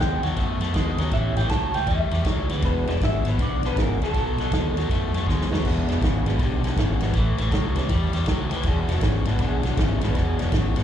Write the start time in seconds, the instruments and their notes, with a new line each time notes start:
0.00 fingered electric bass D#2, overdriven electric guitar B2 G#3, clean electric guitar G5, snare
0.23 fingered electric bass D#2, overdriven electric guitar B2 F#3, clean electric guitar F#5, snare, ride
0.36 fingered electric bass F#2, overdriven electric guitar B2 A3, clean electric guitar D#5, kick, snare, ride
0.61 fingered electric bass F#2, overdriven electric guitar B2 A3, snare, ride
0.74 fingered electric bass D#2, overdriven electric guitar B2 G#3, kick, snare, ride
0.97 fingered electric bass D#2, overdriven electric guitar B2 F#3, tonewheel organ A3 B3 C#4 E4 G4, snare, ride
1.11 fingered electric bass A1, overdriven electric guitar A2 E3, clean electric guitar E5, kick, snare, ride
1.35 fingered electric bass A1, overdriven electric guitar A2 E3, clean electric guitar G5, snare, ride
1.49 fingered electric bass C#2, overdriven electric guitar A2 F#3, clean electric guitar A5, kick, snare, ride
1.73 fingered electric bass C#2, overdriven electric guitar A2 E3, clean electric guitar G5, snare, ride
1.87 fingered electric bass E2, overdriven electric guitar A2 G3, clean electric guitar E5, kick, snare, ride
2.11 fingered electric bass E2, overdriven electric guitar A2 G3, snare, ride
2.24 fingered electric bass C#2, overdriven electric guitar A2 F#3, kick, snare, ride
2.33 clean electric guitar D5
2.49 fingered electric bass D2, overdriven electric guitar A2 E3, tonewheel organ G#3 B3 D4 E4 F#4, snare, ride
2.62 fingered electric bass E1, overdriven electric guitar E2 B2, clean electric guitar B4, kick, snare, ride
2.87 fingered electric bass E1, overdriven electric guitar E2 B2, clean electric guitar D5, snare, ride
3.00 fingered electric bass G#1, overdriven electric guitar E2 C#3, tonewheel organ G#3 B3 D4 E4 F#4, clean electric guitar E5, kick, snare, ride
3.25 fingered electric bass G#1, overdriven electric guitar E2 B2, snare, ride
3.29 clean electric guitar B4
3.38 fingered electric bass B1, overdriven electric guitar E2 D3, clean electric guitar D5, kick, snare, ride
3.63 fingered electric bass B1, overdriven electric guitar E2 D3, clean electric guitar B4, snare, ride
3.76 fingered electric bass G#1, overdriven electric guitar E2 C#3, tonewheel organ G#3 B3 D4 E4 F#4, kick, snare, ride
3.81 clean electric guitar A#4
4.00 fingered electric bass C#2, overdriven electric guitar E2 B2, snare, ride
4.04 clean electric guitar A4
4.14 fingered electric bass B1, overdriven electric guitar B2 F#3, kick, snare, ride
4.37 fingered electric bass B1, overdriven electric guitar B2 F#3, snare, ride
4.51 fingered electric bass D#2, overdriven electric guitar B2 G#3, kick, snare, ride
4.75 fingered electric bass D#2, overdriven electric guitar B2 F#3, snare, ride
4.89 fingered electric bass F#2, overdriven electric guitar B2 A3, kick, snare, ride
5.13 fingered electric bass F#2, overdriven electric guitar B2 A3, snare, ride
5.26 fingered electric bass D#2, overdriven electric guitar B2 G#3, kick, snare
5.41 snare
5.51 fingered electric bass D#2, overdriven electric guitar B2 F#3, tonewheel organ G#3 B3 D4 E4 F#4, snare
5.64 fingered electric bass E1, overdriven electric guitar E2 B2, kick, snare, crash
5.87 fingered electric bass E1, overdriven electric guitar E2 B2, tonewheel organ A#4, snare, ride
5.91 tonewheel organ B4
6.01 fingered electric bass G#1, overdriven electric guitar E2 C#3, kick, snare, ride
6.25 fingered electric bass G#1, overdriven electric guitar E2 B2, tonewheel organ F#3 G#3 B3 D4, snare, ride
6.30 tonewheel organ B4
6.39 fingered electric bass B1, overdriven electric guitar E2 D3, kick, snare, ride
6.45 tonewheel organ G4
6.62 fingered electric bass B1, overdriven electric guitar E2 D3, snare, ride
6.76 fingered electric bass G#1, overdriven electric guitar E2 C#3, tonewheel organ D#4, kick, snare, ride
6.81 tonewheel organ E4
7.00 fingered electric bass G#1, overdriven electric guitar E2 B2, tonewheel organ E3 G3 B3 E4, snare, ride
7.14 fingered electric bass A1, overdriven electric guitar A2 E3, kick, snare, ride
7.18 tonewheel organ A3
7.38 fingered electric bass A1, overdriven electric guitar A2 E3, snare, ride
7.43 tonewheel organ A3
7.51 fingered electric bass C#2, overdriven electric guitar A2 F#3, kick, snare, ride
7.75 fingered electric bass C#2, overdriven electric guitar A2 E3, tonewheel organ E3 G3 B3 C#4, snare, ride
7.89 fingered electric bass E2, overdriven electric guitar A2 G3, kick, snare, ride
8.13 fingered electric bass E2, overdriven electric guitar A2 G3, snare, ride
8.26 fingered electric bass C#2, overdriven electric guitar A2 F#3, kick, snare, ride
8.50 fingered electric bass C#2, overdriven electric guitar A2 E3, snare, ride
8.56 tonewheel organ B4
8.63 fingered electric bass E1, overdriven electric guitar E2 B2, kick, snare, ride
8.70 tonewheel organ G#4
8.88 fingered electric bass E1, overdriven electric guitar E2 B2, snare, ride
8.94 tonewheel organ F#4
9.01 fingered electric bass G#1, overdriven electric guitar E2 C#3, kick, snare, ride
9.07 tonewheel organ E4
9.25 fingered electric bass G#1, overdriven electric guitar E2 B2, snare, ride
9.31 tonewheel organ B4
9.39 fingered electric bass B1, overdriven electric guitar E2 D3, kick, snare, ride
9.45 tonewheel organ G#4
9.63 fingered electric bass B1, overdriven electric guitar E2 D3, snare, ride
9.68 tonewheel organ F#4
9.77 fingered electric bass G#1, overdriven electric guitar E2 C#3, kick, snare, ride
9.81 tonewheel organ E4
10.00 fingered electric bass G#1, overdriven electric guitar E2 B2, tonewheel organ D3 F#3 G#3 B3 A#4, snare, ride
10.04 tonewheel organ B4
10.15 fingered electric bass E1, overdriven electric guitar E2 B2, tonewheel organ G#4, kick, snare, ride
10.39 fingered electric bass E1, overdriven electric guitar E2 B2, snare, ride
10.44 tonewheel organ F#4
10.52 fingered electric bass G#1, overdriven electric guitar E2 C#3, kick, snare, ride
10.57 tonewheel organ E4
10.76 fingered electric bass G#1, overdriven electric guitar E2 B2, snare, ride